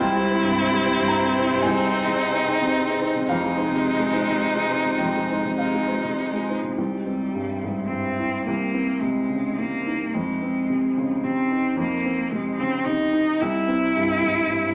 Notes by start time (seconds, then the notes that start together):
Already playing: C5
0.00 C2 C3 G3 C4 E4 G5
0.16 G3 E4
0.30 E4 C5
0.44 G2 C4
0.70 G3 C5
0.83 C4 E4 C5
0.97 G2 E4
1.08 A#5
1.23 G3 C4
1.36 E4 C5
1.50 G2 G4
1.62 C2 C4 D#4 G#4 C5 G#5
1.77 C4 C5
1.90 D#4 C5 G#5
2.04 C3 G#4
2.32 C4 G#5
2.45 D#4 G#4 C5 G5
2.59 C3 C5
2.87 C4 G#4
3.00 D#4 C5 G#5
3.13 C3 D#5
3.27 F2 C3 G#3 D#4 F4 F5
3.41 G#3 G#4
3.55 D#4 C5 D#5
3.68 C3 F4
3.96 G#3 D#5
4.10 D#4 F4 C5
4.23 C3 G#4
4.52 G#3 F4
4.67 D#4 C5 D#5
4.82 C3 C5
4.98 F2 F4 G5
5.13 G#3 G#4
5.28 D#4 C5 D#5
5.43 C3 F4
5.58 C3 G#3 D#4 F5
5.74 G#3 D#5
5.88 D#4 F4 C5
6.03 C3 G#4
6.17 G#3
6.33 G#3 F4
6.48 D#4 C5 D#5
6.62 C3 C5
6.77 C2 G3 C4 E4 C5
7.06 C4
7.34 G2
7.63 G#2
7.87 G2 C4
8.18 E4
8.45 C2 A#3 D#4
8.74 C4
9.01 C3 G#3
9.29 C#3
9.57 C3 A#3
9.86 D#4
10.14 F2 G#3 C4 C5
10.42 C4
10.70 C3
10.97 C#3
11.24 C3 C4
11.51 D#4
11.76 F2 A#3
12.05 C4
12.31 C3 G#3
12.58 C#3 C4
12.85 C3 D#4
13.13 D#4
13.39 C2 E4 G4
13.67 C4
13.96 G2
14.23 G#2
14.51 G2